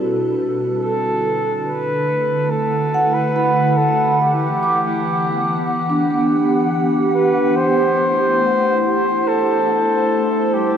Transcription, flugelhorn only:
0.81 A4
1.67 B4
2.50 A4
3.14 B4
3.77 A4
4.22 G4
7.15 B4
7.56 C5
9.28 A4
10.54 G4

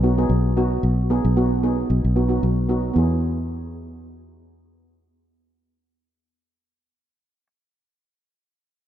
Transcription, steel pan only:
0.03 B3 D#4 F#4
0.18 B3 D#4 G#4
0.57 B3 D#4 F#4
1.10 B3 D#4 G#4
1.37 B3 D#4 F#4
1.63 B3 D#4 G#4
2.16 B3 D#4 F#4
2.29 B3 D#4 F#4
2.69 B3 D#4 F#4
2.94 B3 E4
2.98 G#4

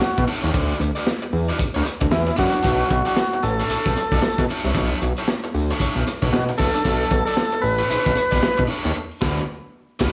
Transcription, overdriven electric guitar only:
0.02 muted overdriven electric guitar stroke
0.18 muted overdriven electric guitar stroke
0.28 D4 E4 A4 C#5
0.43 D4 E4 A4 C#5
0.53 D4 F#4 B4 D5
0.79 muted overdriven electric guitar stroke
0.95 D4 F#4 B4 D5
1.07 muted overdriven electric guitar stroke
1.22 muted overdriven electric guitar stroke
1.49 D4 F#4 B4 D5
1.58 muted overdriven electric guitar stroke
1.75 D4 F#4 B4 D5
1.85 muted overdriven electric guitar stroke
2.01 muted overdriven electric guitar stroke
2.11 muted overdriven electric guitar stroke
2.27 muted overdriven electric guitar stroke
2.37 D4 F#4 B4 D5
2.53 muted overdriven electric guitar stroke
2.63 D4 E4 A4 C#5
2.89 muted overdriven electric guitar stroke
3.05 D4 E4 A4 D5
3.17 muted overdriven electric guitar stroke
3.33 muted overdriven electric guitar stroke
3.60 D4 E4 A4 C#5
3.70 D4 E4 A4 C#5
3.97 muted overdriven electric guitar stroke
4.12 D4 E4 A4 D5
4.23 muted overdriven electric guitar stroke
4.40 muted overdriven electric guitar stroke
4.51 D4 E4 A4 C#5
4.66 D4 E4 A4 C#5
4.76 D4 E4 A4 C#5
5.03 muted overdriven electric guitar stroke
5.18 D4 E4 A4 C#5
5.28 muted overdriven electric guitar stroke
5.44 muted overdriven electric guitar stroke
5.71 D4 E4 A4 C#5
5.81 D4 E4 A4 C#5
6.07 muted overdriven electric guitar stroke
6.22 D4 E4 A4 C#5
6.34 muted overdriven electric guitar stroke
6.49 muted overdriven electric guitar stroke
6.58 D4 E4 A4 C#5
6.74 muted overdriven electric guitar stroke
6.84 D4 E4 A4 C#5
7.11 muted overdriven electric guitar stroke
7.27 D4 E4 A4 D5
7.36 muted overdriven electric guitar stroke
7.53 muted overdriven electric guitar stroke
7.79 D4 E4 A4 C#5
7.89 D4 E4 A4 C#5
8.16 muted overdriven electric guitar stroke
8.31 D4 E4 A4 D5
8.42 muted overdriven electric guitar stroke
8.58 muted overdriven electric guitar stroke
8.67 D4 E4 A4 C#5
8.84 D4 E4 A4 C#5
9.21 A3 D4 F#4 B4
10.00 A3 D4 F#4 B4

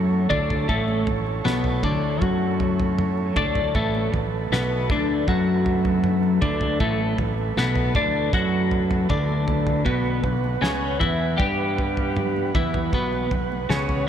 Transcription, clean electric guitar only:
Already playing: F#3 F#4
0.29 D3 D4
0.68 A2 A3
1.07 A2
1.45 B2 B3
1.84 D3 D4
2.21 F#3 F#4
3.37 D3 D4
3.76 A2 A3
4.13 A2
4.53 B2 B3
4.91 D3 D4
5.28 F#3 F#4
6.41 D3 D4
6.80 A2 A3
7.19 A2
7.58 B2 B3
7.95 D3 D4
8.33 F#3 F#4
9.09 D3 D4
9.85 B2 B3
10.24 B2
10.61 C#3 C#4
10.99 E3 E4
11.37 G3 G4
12.55 E3 E4
12.93 B2 B3
13.32 B2
13.70 C#3 C#4

